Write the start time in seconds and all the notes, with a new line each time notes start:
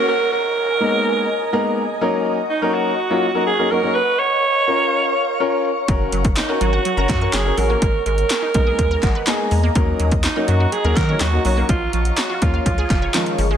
Already playing: A#5, downlifter
0.08 A#4 D#5 G#5
0.32 A#4
0.80 G#3 A#3 B3 D#4 A#4
1.53 G#3 A#3 B3 D#4 A#4
2.01 F#3 A#3 C#4 D#4 A#4 F#5 C#6
2.50 D#4
2.62 F#3 A#3 C#4 D#4 A#4
2.74 F#4
3.10 F#3 A#3 C#4 D#4 F4
3.34 F#3 A#3 C#4 D#4 A#4
3.47 G#4
3.59 F#3 A#3 C#4 D#4 A#4
3.71 F#3 A#3 C#4 D#4 A#4
3.83 F#3 A#3 C#4 D#4 A#4
3.95 A#4 B4 C#5 F5
4.19 C#5
4.67 C#4 F4 A#4
5.40 C#4 F4 A#4
5.88 F#1 F#3 C#4 F#4 A#4 F#5, kick, closed hi-hat
6.12 F#1 F#3, closed hi-hat
6.25 kick, closed hi-hat
6.37 D#4, snare, clap, closed hi-hat
6.49 C#4 F#4 A#4
6.61 G#1 F#3 F#4, closed hi-hat
6.73 F#5
6.85 F#3, closed hi-hat
6.97 F#1 C#4 F#4 A#4 A#5
7.09 F#2 F#3, kick, clap, closed hi-hat
7.21 C#4 F#4 A#4 C#6
7.33 F#1 F#3 G#4, snare, clap, closed hi-hat
7.45 C#4 F#4 A#4
7.58 A1 F#3 C#4 F#4 G#4 A#4, open hi-hat
7.70 A#3 C#4 F#4 A#4
7.82 G#1 G#3 D#5 G#5 A#5, kick, closed hi-hat
8.06 G#1 G#3 A#4, closed hi-hat
8.18 closed hi-hat
8.30 snare, clap, closed hi-hat
8.42 D#4
8.54 B1 G#3 A#3 B3 D#4 A#4, kick, closed hi-hat
8.67 G#4
8.79 D#2 G#3, kick, closed hi-hat
8.91 A#4
9.03 G#1 G#3 F#5, kick, clap, closed hi-hat
9.15 B4
9.27 G#3 A#3 B3 D#4 G#4 G#5, snare, clap, closed hi-hat
9.51 E2 G#3 A#5, open hi-hat
9.63 A#3
9.75 D#2 F#3 A#3 C#4 D#4 A#4 F#5 C#6, kick, closed hi-hat
10.00 D#2 F#3, closed hi-hat
10.11 kick, closed hi-hat
10.24 D#4, snare, clap, closed hi-hat
10.36 F#3 A#3 C#4 D#4 A#4
10.48 F#2 F#3 F#4, closed hi-hat
10.60 F#4
10.72 F#3 G#4, closed hi-hat
10.84 D#2 F#3 A#3 C#4 D#4 A#4
10.97 D#3 F#3 A#4, kick, clap, closed hi-hat
11.09 F#3 A#3 C#4 D#4 A#4 C#5
11.20 D#2 F#3 F#4, snare, clap, closed hi-hat
11.33 F#3 A#3 C#4 D#4 F#4
11.45 B1 F#3 A#3 C#4 D#4 F#4 C#5, open hi-hat
11.57 F#3 A#3 C#4 D#4 A#4
11.69 A#1 F3 F4 C#5 F5, kick, closed hi-hat
11.93 A#1 F3 F4, closed hi-hat
12.05 closed hi-hat
12.17 F#4, snare, clap, closed hi-hat
12.30 F4
12.42 D#2 F3 A#3 C#4 F4, kick, closed hi-hat
12.54 F5
12.66 C#2 F3 F4 G#4 D#5, kick, closed hi-hat
12.78 G#4
12.90 F1 F3, kick, clap, closed hi-hat
13.02 C#5
13.14 D#3 F3 G#3 C#4 F4, snare, clap, closed hi-hat
13.26 closed hi-hat
13.38 G1 F3, open hi-hat
13.51 G#3